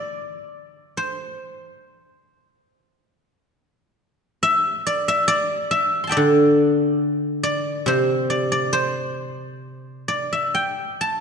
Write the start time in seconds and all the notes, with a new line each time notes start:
Already playing: C5 D5 E5
0.97 C5
4.43 E5
4.87 D5
5.08 E5
5.28 D5
5.71 E5
6.04 A5 C6
6.09 D5 E5 G5
6.17 D3
7.43 D5
7.86 C3 C5
8.30 D5
8.52 D5
8.73 C5
10.08 D5
10.33 E5
10.55 G5
11.01 A5